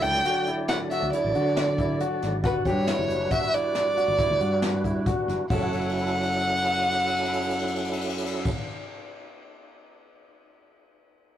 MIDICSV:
0, 0, Header, 1, 6, 480
1, 0, Start_track
1, 0, Tempo, 437637
1, 2676, Time_signature, 7, 2, 24, 8
1, 12477, End_track
2, 0, Start_track
2, 0, Title_t, "Violin"
2, 0, Program_c, 0, 40
2, 27, Note_on_c, 0, 79, 101
2, 512, Note_off_c, 0, 79, 0
2, 752, Note_on_c, 0, 78, 89
2, 861, Note_off_c, 0, 78, 0
2, 1000, Note_on_c, 0, 76, 81
2, 1222, Note_off_c, 0, 76, 0
2, 1247, Note_on_c, 0, 74, 78
2, 2397, Note_off_c, 0, 74, 0
2, 2693, Note_on_c, 0, 71, 87
2, 2797, Note_off_c, 0, 71, 0
2, 2923, Note_on_c, 0, 73, 86
2, 3637, Note_on_c, 0, 76, 94
2, 3653, Note_off_c, 0, 73, 0
2, 3882, Note_on_c, 0, 74, 99
2, 3899, Note_off_c, 0, 76, 0
2, 5558, Note_off_c, 0, 74, 0
2, 6040, Note_on_c, 0, 78, 94
2, 9329, Note_off_c, 0, 78, 0
2, 12477, End_track
3, 0, Start_track
3, 0, Title_t, "Grand piano"
3, 0, Program_c, 1, 0
3, 0, Note_on_c, 1, 64, 70
3, 157, Note_off_c, 1, 64, 0
3, 277, Note_on_c, 1, 66, 82
3, 458, Note_off_c, 1, 66, 0
3, 523, Note_on_c, 1, 64, 72
3, 882, Note_off_c, 1, 64, 0
3, 1007, Note_on_c, 1, 66, 73
3, 1184, Note_off_c, 1, 66, 0
3, 1247, Note_on_c, 1, 64, 72
3, 1424, Note_off_c, 1, 64, 0
3, 1483, Note_on_c, 1, 66, 64
3, 1842, Note_off_c, 1, 66, 0
3, 1967, Note_on_c, 1, 64, 74
3, 2143, Note_off_c, 1, 64, 0
3, 2201, Note_on_c, 1, 66, 77
3, 2560, Note_off_c, 1, 66, 0
3, 2675, Note_on_c, 1, 66, 82
3, 2856, Note_off_c, 1, 66, 0
3, 2923, Note_on_c, 1, 67, 70
3, 3100, Note_off_c, 1, 67, 0
3, 3159, Note_on_c, 1, 64, 74
3, 3518, Note_off_c, 1, 64, 0
3, 3633, Note_on_c, 1, 66, 73
3, 3814, Note_off_c, 1, 66, 0
3, 3886, Note_on_c, 1, 64, 66
3, 4243, Note_off_c, 1, 64, 0
3, 4357, Note_on_c, 1, 66, 65
3, 4536, Note_off_c, 1, 66, 0
3, 4597, Note_on_c, 1, 64, 76
3, 4776, Note_off_c, 1, 64, 0
3, 4834, Note_on_c, 1, 66, 58
3, 5195, Note_off_c, 1, 66, 0
3, 5317, Note_on_c, 1, 64, 69
3, 5496, Note_off_c, 1, 64, 0
3, 5557, Note_on_c, 1, 66, 74
3, 5917, Note_off_c, 1, 66, 0
3, 6033, Note_on_c, 1, 66, 62
3, 6078, Note_on_c, 1, 69, 65
3, 6124, Note_on_c, 1, 73, 60
3, 6165, Note_on_c, 1, 78, 59
3, 9326, Note_off_c, 1, 66, 0
3, 9348, Note_off_c, 1, 69, 0
3, 9371, Note_off_c, 1, 73, 0
3, 9392, Note_off_c, 1, 78, 0
3, 12477, End_track
4, 0, Start_track
4, 0, Title_t, "Tonewheel organ"
4, 0, Program_c, 2, 16
4, 0, Note_on_c, 2, 50, 59
4, 0, Note_on_c, 2, 54, 53
4, 0, Note_on_c, 2, 62, 47
4, 0, Note_on_c, 2, 74, 61
4, 2621, Note_off_c, 2, 50, 0
4, 2627, Note_off_c, 2, 62, 0
4, 2633, Note_off_c, 2, 54, 0
4, 2635, Note_off_c, 2, 74, 0
4, 2656, Note_on_c, 2, 55, 54
4, 2664, Note_on_c, 2, 62, 53
4, 2679, Note_on_c, 2, 66, 50
4, 2687, Note_on_c, 2, 71, 62
4, 5980, Note_off_c, 2, 55, 0
4, 5984, Note_off_c, 2, 62, 0
4, 5991, Note_off_c, 2, 66, 0
4, 5995, Note_off_c, 2, 71, 0
4, 6032, Note_on_c, 2, 61, 62
4, 6034, Note_on_c, 2, 64, 62
4, 6037, Note_on_c, 2, 54, 65
4, 6038, Note_on_c, 2, 69, 72
4, 9326, Note_off_c, 2, 61, 0
4, 9326, Note_off_c, 2, 64, 0
4, 9328, Note_off_c, 2, 54, 0
4, 9328, Note_off_c, 2, 69, 0
4, 12477, End_track
5, 0, Start_track
5, 0, Title_t, "Fretless electric bass"
5, 0, Program_c, 3, 35
5, 32, Note_on_c, 3, 37, 76
5, 218, Note_off_c, 3, 37, 0
5, 1120, Note_on_c, 3, 38, 69
5, 1211, Note_off_c, 3, 38, 0
5, 1364, Note_on_c, 3, 33, 83
5, 1453, Note_off_c, 3, 33, 0
5, 1483, Note_on_c, 3, 50, 77
5, 2215, Note_off_c, 3, 50, 0
5, 2446, Note_on_c, 3, 32, 77
5, 2674, Note_off_c, 3, 32, 0
5, 2674, Note_on_c, 3, 31, 93
5, 2911, Note_on_c, 3, 43, 75
5, 2927, Note_off_c, 3, 31, 0
5, 3188, Note_off_c, 3, 43, 0
5, 3277, Note_on_c, 3, 30, 87
5, 3368, Note_off_c, 3, 30, 0
5, 3394, Note_on_c, 3, 30, 70
5, 3578, Note_off_c, 3, 30, 0
5, 4474, Note_on_c, 3, 31, 70
5, 4566, Note_off_c, 3, 31, 0
5, 4715, Note_on_c, 3, 38, 77
5, 4807, Note_off_c, 3, 38, 0
5, 4835, Note_on_c, 3, 43, 77
5, 5569, Note_off_c, 3, 43, 0
5, 5793, Note_on_c, 3, 30, 80
5, 5885, Note_off_c, 3, 30, 0
5, 6034, Note_on_c, 3, 30, 88
5, 9326, Note_off_c, 3, 30, 0
5, 12477, End_track
6, 0, Start_track
6, 0, Title_t, "Drums"
6, 30, Note_on_c, 9, 42, 63
6, 140, Note_off_c, 9, 42, 0
6, 272, Note_on_c, 9, 42, 67
6, 382, Note_off_c, 9, 42, 0
6, 506, Note_on_c, 9, 42, 58
6, 616, Note_off_c, 9, 42, 0
6, 752, Note_on_c, 9, 38, 98
6, 752, Note_on_c, 9, 42, 72
6, 861, Note_off_c, 9, 38, 0
6, 861, Note_off_c, 9, 42, 0
6, 996, Note_on_c, 9, 42, 59
6, 1106, Note_off_c, 9, 42, 0
6, 1237, Note_on_c, 9, 42, 78
6, 1347, Note_off_c, 9, 42, 0
6, 1478, Note_on_c, 9, 42, 50
6, 1588, Note_off_c, 9, 42, 0
6, 1716, Note_on_c, 9, 38, 101
6, 1716, Note_on_c, 9, 42, 71
6, 1826, Note_off_c, 9, 38, 0
6, 1826, Note_off_c, 9, 42, 0
6, 1956, Note_on_c, 9, 36, 74
6, 1957, Note_on_c, 9, 42, 51
6, 2066, Note_off_c, 9, 36, 0
6, 2066, Note_off_c, 9, 42, 0
6, 2194, Note_on_c, 9, 42, 74
6, 2304, Note_off_c, 9, 42, 0
6, 2438, Note_on_c, 9, 38, 29
6, 2438, Note_on_c, 9, 42, 52
6, 2548, Note_off_c, 9, 38, 0
6, 2548, Note_off_c, 9, 42, 0
6, 2674, Note_on_c, 9, 36, 100
6, 2678, Note_on_c, 9, 42, 74
6, 2784, Note_off_c, 9, 36, 0
6, 2787, Note_off_c, 9, 42, 0
6, 2913, Note_on_c, 9, 36, 72
6, 2915, Note_on_c, 9, 42, 52
6, 3022, Note_off_c, 9, 36, 0
6, 3025, Note_off_c, 9, 42, 0
6, 3151, Note_on_c, 9, 38, 99
6, 3151, Note_on_c, 9, 42, 73
6, 3260, Note_off_c, 9, 38, 0
6, 3260, Note_off_c, 9, 42, 0
6, 3398, Note_on_c, 9, 42, 58
6, 3508, Note_off_c, 9, 42, 0
6, 3626, Note_on_c, 9, 38, 26
6, 3626, Note_on_c, 9, 42, 73
6, 3630, Note_on_c, 9, 36, 86
6, 3736, Note_off_c, 9, 38, 0
6, 3736, Note_off_c, 9, 42, 0
6, 3739, Note_off_c, 9, 36, 0
6, 3872, Note_on_c, 9, 42, 61
6, 3982, Note_off_c, 9, 42, 0
6, 4113, Note_on_c, 9, 38, 86
6, 4113, Note_on_c, 9, 42, 74
6, 4223, Note_off_c, 9, 38, 0
6, 4223, Note_off_c, 9, 42, 0
6, 4356, Note_on_c, 9, 42, 64
6, 4465, Note_off_c, 9, 42, 0
6, 4591, Note_on_c, 9, 36, 95
6, 4592, Note_on_c, 9, 42, 83
6, 4700, Note_off_c, 9, 36, 0
6, 4702, Note_off_c, 9, 42, 0
6, 4829, Note_on_c, 9, 42, 52
6, 4939, Note_off_c, 9, 42, 0
6, 5070, Note_on_c, 9, 38, 99
6, 5070, Note_on_c, 9, 42, 77
6, 5179, Note_off_c, 9, 38, 0
6, 5179, Note_off_c, 9, 42, 0
6, 5313, Note_on_c, 9, 36, 62
6, 5316, Note_on_c, 9, 42, 52
6, 5422, Note_off_c, 9, 36, 0
6, 5425, Note_off_c, 9, 42, 0
6, 5551, Note_on_c, 9, 42, 74
6, 5553, Note_on_c, 9, 36, 97
6, 5661, Note_off_c, 9, 42, 0
6, 5663, Note_off_c, 9, 36, 0
6, 5802, Note_on_c, 9, 38, 29
6, 5802, Note_on_c, 9, 42, 49
6, 5912, Note_off_c, 9, 38, 0
6, 5912, Note_off_c, 9, 42, 0
6, 6036, Note_on_c, 9, 36, 100
6, 6039, Note_on_c, 9, 49, 88
6, 6146, Note_off_c, 9, 36, 0
6, 6149, Note_off_c, 9, 49, 0
6, 6278, Note_on_c, 9, 57, 39
6, 6368, Note_on_c, 9, 51, 40
6, 6388, Note_off_c, 9, 57, 0
6, 6462, Note_on_c, 9, 57, 45
6, 6477, Note_off_c, 9, 51, 0
6, 6558, Note_on_c, 9, 51, 47
6, 6572, Note_off_c, 9, 57, 0
6, 6651, Note_on_c, 9, 57, 45
6, 6668, Note_off_c, 9, 51, 0
6, 6743, Note_on_c, 9, 51, 44
6, 6761, Note_off_c, 9, 57, 0
6, 6832, Note_on_c, 9, 57, 54
6, 6853, Note_off_c, 9, 51, 0
6, 6929, Note_on_c, 9, 51, 47
6, 6942, Note_off_c, 9, 57, 0
6, 7013, Note_on_c, 9, 57, 44
6, 7039, Note_off_c, 9, 51, 0
6, 7113, Note_on_c, 9, 51, 47
6, 7123, Note_off_c, 9, 57, 0
6, 7204, Note_on_c, 9, 57, 53
6, 7223, Note_off_c, 9, 51, 0
6, 7293, Note_on_c, 9, 51, 57
6, 7313, Note_off_c, 9, 57, 0
6, 7385, Note_on_c, 9, 57, 53
6, 7403, Note_off_c, 9, 51, 0
6, 7475, Note_on_c, 9, 51, 54
6, 7494, Note_off_c, 9, 57, 0
6, 7572, Note_on_c, 9, 57, 58
6, 7585, Note_off_c, 9, 51, 0
6, 7665, Note_on_c, 9, 51, 62
6, 7681, Note_off_c, 9, 57, 0
6, 7760, Note_on_c, 9, 57, 63
6, 7775, Note_off_c, 9, 51, 0
6, 7855, Note_on_c, 9, 51, 67
6, 7870, Note_off_c, 9, 57, 0
6, 7950, Note_on_c, 9, 57, 60
6, 7965, Note_off_c, 9, 51, 0
6, 8041, Note_on_c, 9, 51, 65
6, 8060, Note_off_c, 9, 57, 0
6, 8136, Note_on_c, 9, 57, 68
6, 8151, Note_off_c, 9, 51, 0
6, 8229, Note_on_c, 9, 51, 61
6, 8246, Note_off_c, 9, 57, 0
6, 8322, Note_on_c, 9, 57, 66
6, 8338, Note_off_c, 9, 51, 0
6, 8417, Note_on_c, 9, 51, 69
6, 8431, Note_off_c, 9, 57, 0
6, 8508, Note_on_c, 9, 57, 74
6, 8527, Note_off_c, 9, 51, 0
6, 8606, Note_on_c, 9, 51, 67
6, 8618, Note_off_c, 9, 57, 0
6, 8696, Note_on_c, 9, 57, 74
6, 8716, Note_off_c, 9, 51, 0
6, 8786, Note_on_c, 9, 51, 75
6, 8806, Note_off_c, 9, 57, 0
6, 8878, Note_on_c, 9, 57, 77
6, 8896, Note_off_c, 9, 51, 0
6, 8970, Note_on_c, 9, 51, 85
6, 8988, Note_off_c, 9, 57, 0
6, 9061, Note_on_c, 9, 57, 85
6, 9080, Note_off_c, 9, 51, 0
6, 9171, Note_off_c, 9, 57, 0
6, 9267, Note_on_c, 9, 49, 84
6, 9272, Note_on_c, 9, 36, 94
6, 9377, Note_off_c, 9, 49, 0
6, 9382, Note_off_c, 9, 36, 0
6, 12477, End_track
0, 0, End_of_file